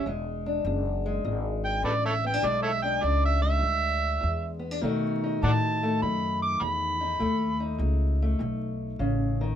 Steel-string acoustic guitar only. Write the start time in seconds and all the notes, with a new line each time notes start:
0.06 E2 G#3
0.46 D4
0.67 E2
1.06 G#3
1.25 E2
1.85 E2
2.24 B3
2.34 D4
2.42 E2 G#3
2.84 D4
3.01 E2
3.41 G#3
3.59 E2
4.21 E2
4.59 B3
4.71 D4
4.81 B2 D#3 A3 D#4 F#4
5.24 D#4
5.42 B2
5.83 A3
6.02 B2
6.61 B2
7.01 D#4
7.19 B2 A3
7.60 D#4
7.78 B2
8.22 A3
8.39 B2
8.99 C#3
9.41 D#3